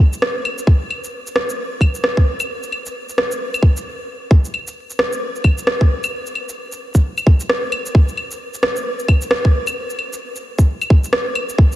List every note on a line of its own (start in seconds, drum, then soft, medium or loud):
0.13 shaker medium
0.22 cross-stick loud
0.45 claves medium
0.58 shaker medium
0.67 kick loud
0.90 claves soft
1.04 shaker medium
1.27 shaker soft
1.36 cross-stick loud
1.50 shaker medium
1.81 kick medium
1.81 claves medium
1.95 shaker medium
2.04 cross-stick loud
2.17 kick loud
2.40 claves medium
2.40 shaker medium
2.63 shaker soft
2.72 claves soft
2.86 shaker medium
3.09 shaker soft
3.18 cross-stick loud
3.31 shaker medium
3.54 claves medium
3.54 shaker soft
3.63 kick loud
3.77 shaker medium
4.31 kick loud
4.45 shaker soft
4.54 claves soft
4.67 shaker medium
4.90 shaker soft
4.99 cross-stick loud
5.13 shaker medium
5.35 shaker soft
5.44 kick medium
5.44 claves medium
5.58 shaker medium
5.67 cross-stick loud
5.81 kick loud
6.04 claves medium
6.04 shaker medium
6.26 shaker soft
6.35 claves soft
6.49 shaker medium
6.72 shaker soft
6.95 kick medium
6.95 shaker medium
7.18 claves medium
7.18 shaker soft
7.27 kick loud
7.40 shaker medium
7.50 cross-stick loud
7.72 claves medium
7.86 shaker medium
7.95 kick loud
8.08 shaker soft
8.17 claves soft
8.31 shaker medium
8.54 shaker soft
8.63 cross-stick loud
8.76 shaker medium
8.99 shaker soft
9.08 kick medium
9.08 claves medium
9.22 shaker medium
9.31 cross-stick loud
9.45 kick loud
9.67 claves medium
9.67 shaker medium
9.90 shaker soft
9.99 claves soft
10.13 shaker medium
10.36 shaker soft
10.59 kick medium
10.59 shaker medium
10.82 claves soft
10.82 shaker soft
10.90 kick loud
11.04 shaker medium
11.13 cross-stick loud
11.35 claves medium
11.49 shaker medium
11.58 kick loud
11.72 shaker soft